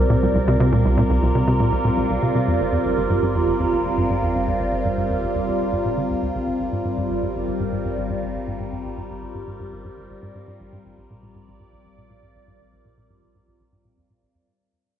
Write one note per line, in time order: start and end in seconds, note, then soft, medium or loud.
0.00 2.45 C2 medium
0.00 6.46 G3 medium
0.00 14.47 C4 medium
0.00 14.47 F4 medium
0.00 14.47 A#4 medium
0.00 10.48 D5 medium
0.10 0.15 A#2 medium
0.23 0.31 C2 medium
0.35 0.44 C2 medium
0.48 0.56 C3 medium
0.60 0.72 C3 medium
0.72 0.84 A#2 medium
0.85 0.97 C2 medium
0.97 1.03 A#2 medium
1.10 1.19 C2 medium
1.22 1.31 C2 medium
1.35 1.44 C3 medium
1.47 1.59 C3 medium
1.60 1.72 A#2 medium
1.72 1.84 C2 medium
1.85 1.90 A#2 medium
1.97 2.06 C2 medium
2.10 2.19 C2 medium
2.22 2.31 C3 medium
2.35 2.47 C3 medium
2.47 6.45 G1 medium
2.47 2.59 F2 medium
2.60 2.72 G1 medium
2.72 2.78 F2 medium
2.85 2.94 G1 medium
2.97 3.06 G1 medium
3.10 3.19 G2 medium
3.22 3.34 G2 medium
3.35 3.47 F2 medium
3.47 3.59 G1 medium
3.60 3.65 F2 medium
3.72 3.81 G1 medium
3.85 3.94 G1 medium
3.97 4.06 G2 medium
4.10 4.22 G2 medium
4.22 4.34 F2 medium
4.35 4.47 G1 medium
4.47 4.53 F2 medium
4.60 4.69 G1 medium
4.72 4.81 G1 medium
4.85 4.94 G2 medium
4.97 5.09 G2 medium
5.10 5.22 F2 medium
5.22 5.34 G1 medium
5.35 5.40 F2 medium
5.47 5.56 G1 medium
5.60 5.69 G1 medium
5.72 5.81 G2 medium
5.85 5.94 A#2 medium
5.97 6.06 D3 medium
6.10 6.15 D2 medium
6.22 6.31 D2 medium
6.35 6.47 C2 medium
6.47 6.56 G#1 medium
6.47 10.45 G#1 medium
6.47 14.47 G3 medium
6.60 6.69 G#1 medium
6.72 6.81 G#2 medium
6.85 6.97 G#2 medium
6.97 7.09 G2 medium
7.10 7.22 G#1 medium
7.23 7.28 G2 medium
7.35 7.44 G#1 medium
7.47 7.56 G#1 medium
7.60 7.69 G#2 medium
7.72 7.84 G#2 medium
7.85 7.97 G2 medium
7.97 8.09 G#1 medium
8.10 8.15 G2 medium
8.22 8.31 G#1 medium
8.35 8.44 G#1 medium
8.47 8.56 G#2 medium
8.60 8.72 G#2 medium
8.72 8.84 G2 medium
8.85 8.97 G#1 medium
8.97 9.03 G2 medium
9.10 9.19 G#1 medium
9.22 9.31 G#1 medium
9.35 9.44 G#2 medium
9.47 9.59 G#2 medium
9.60 9.72 G2 medium
9.72 9.84 G#1 medium
9.85 9.90 G2 medium
9.97 10.06 G#1 medium
10.10 10.19 G#1 medium
10.22 10.31 G#2 medium
10.35 10.47 G#2 medium
10.47 14.45 A#1 medium
10.47 10.59 G#2 medium
10.60 10.72 A#1 medium
10.73 10.78 G#2 medium
10.85 10.94 A#1 medium
10.85 14.47 D5 medium
10.98 11.06 A#1 medium
11.10 11.19 A#2 medium
11.23 11.34 A#2 medium
11.35 11.47 G#2 medium
11.48 11.59 A#1 medium
11.60 11.65 G#2 medium
11.73 11.81 A#1 medium
11.85 11.94 A#1 medium
11.98 12.06 A#2 medium
12.10 12.22 A#2 medium
12.22 12.34 G#2 medium
12.35 12.47 A#1 medium
12.47 12.53 G#2 medium
12.60 12.69 A#1 medium
12.72 12.81 A#1 medium
12.85 12.94 A#2 medium
12.97 13.09 A#2 medium
13.10 13.22 G#2 medium
13.22 13.34 A#1 medium
13.35 13.40 G#2 medium
13.48 13.56 A#1 medium
13.60 13.69 A#1 medium
13.72 13.84 G#2 medium
13.85 13.94 A#2 medium
13.97 14.06 F2 medium
14.10 14.22 A#2 medium
14.22 14.28 A#1 medium
14.35 14.44 F2 medium